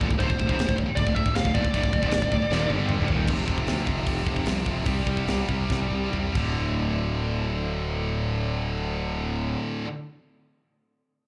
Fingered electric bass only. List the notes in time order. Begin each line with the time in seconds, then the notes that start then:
0.01 D#1
0.10 D1
0.20 D1
0.30 D1
0.40 D1
0.49 F1
0.59 D1
0.68 D1
0.78 D1
0.88 muted fingered electric bass stroke
0.97 D1
1.07 D1
1.16 D1
1.26 D1
1.35 D1
1.45 D1
1.55 D#1
1.64 D1
1.74 D1
1.83 D1
1.93 D1
2.03 F1
2.14 D1
2.22 D1
2.32 D1
2.42 muted fingered electric bass stroke
2.50 D#1
2.70 G1
2.99 D1
3.09 D#1
3.28 F1
3.48 F1
3.68 D2
3.87 F1
4.07 F1
4.26 F1
4.47 C2
4.66 F1
4.86 C2
5.07 C2
5.28 C2
5.49 C2
5.70 C2
5.92 C2
6.14 C2
6.35 D1